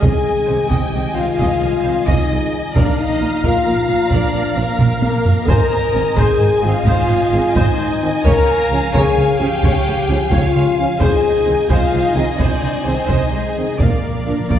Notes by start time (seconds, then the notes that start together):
0.00 C2 C3 D#3 G#3 G#4 D#5 G#5, taiko
0.46 C2 C3 C5
0.67 C2 C3 G4 D#5 G5, taiko
0.92 C2 C3 D#5
1.15 C2 C3 F4 C5 F5
1.38 C2 C3 D#5, taiko
1.60 C2 C3 D#5
1.83 C2 C3 C5
2.05 C2 C3 D#4 D#5, taiko
2.27 C2 C3 D#5
2.74 A#1 A#2 F3 A#3 D4 A#4 D5 F5 A#5, taiko
2.98 D#4 D#5
3.20 A#1 A#2 F4
3.43 A#1 A#2 F4 A#4 F5, taiko
3.66 A#1 A#2 A#4
3.88 A#1 A#2 F4
4.11 A#1 A#2 D4 A#4 D5, taiko
4.33 A#1 A#2 A#4
4.56 A#1 A#2 A#3 F4 A#4
4.78 A#1 A#2 A#3 A#4, taiko low-mid
5.02 A#1 A#2 A#4, taiko high
5.25 taiko low
5.47 G#1 G#2 A#4 C5 D#5 G#5 A#5, taiko
5.92 G#1 G#2 D#3 C4 G#4
6.16 G#1 G#2 G#4 C5 G#5, taiko
6.40 G#1 G#2 C5
6.63 G#1 G#2 D#3 C4 F4 G#4 F5
6.85 G#1 G#2 C5, taiko
7.09 G#1 G#2 C5
7.32 G#1 G#2 D#3 C4 G#4
7.55 G#1 G#2 D#4 C5 D#5, taiko
7.77 G#1 G#2 C5
8.01 D#3 C4
8.23 C#2 C#3 A#4 C#5 F5 A#5, taiko
8.70 C#2 C#3 F3 C#4 G#4
8.93 C#2 C#3 G#4 C#5 G#5, taiko
9.16 C#2 C#3 C#5
9.39 C#2 C#3 F3 C#4 G4 G#4 G5
9.62 C#2 C#3 C#5, taiko
9.85 C#2 C#3 C#5
10.08 C#2 C#3 F3 C#4 G#4
10.30 C#2 C#3 F4 C#5 F5, taiko
10.54 C#2 C#3 C#5
10.78 F3 C#4
10.99 C2 C3 D#4 G#4 C5 D#5 G#5, taiko
11.45 C2 C3 D#3 C4 G#4
11.69 C2 C3 F4 C5 F5, taiko
11.92 C2 C3 C5
12.14 C2 C3 D#3 C4 D#4 G#4 D#5
12.38 C2 C3 D4 C5 D5, taiko
12.62 C2 C3 C5
12.84 C2 C3 D#3 C4 G#4 C5
13.06 C2 C3 C5 D#5, taiko
13.12 D#4
13.31 C2 C3 G#3 G#4 C5
13.57 D#3 C4
13.78 A#1 A#2 A#3 A#4 D5 F5, taiko
13.86 A#2
13.95 A#2
14.02 A#2
14.09 A#2
14.16 A#2
14.25 A#1 A#2 F3 D4 A#4
14.32 A#2
14.40 A#2
14.48 A#1 A#2 D5, taiko
14.56 A#2